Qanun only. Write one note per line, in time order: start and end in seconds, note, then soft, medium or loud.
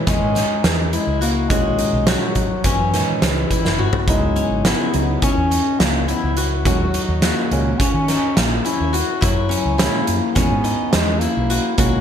0.00 0.41 E4 medium
0.07 1.61 C#4 medium
0.35 0.99 D#4 medium
0.93 1.85 E4 medium
1.21 1.50 F#4 medium
1.50 2.07 F#4 medium
1.79 2.93 D#4 medium
2.08 3.38 F#4 medium
2.65 4.20 C#4 medium
2.94 3.57 D#4 medium
3.51 4.08 E4 medium
3.78 5.08 F#4 medium
4.08 4.64 E4 medium
4.36 5.22 C#4 medium
4.65 5.57 E4 medium
5.23 6.77 C#4 medium
5.51 6.14 D#4 medium
6.08 7.01 E4 medium
6.37 6.66 F#4 medium
6.66 7.22 F#4 medium
6.95 8.08 D#4 medium
7.23 8.53 F#4 medium
7.80 9.34 C#4 medium
8.08 8.71 D#4 medium
8.65 9.20 E4 medium
8.93 10.23 F#4 medium
9.21 9.78 E4 medium
9.49 10.35 C#4 medium
9.78 10.70 E4 medium
10.35 11.90 C#4 medium
10.64 11.28 D#4 medium
11.22 12.01 E4 medium
11.50 11.78 F#4 medium
11.79 12.01 F#4 medium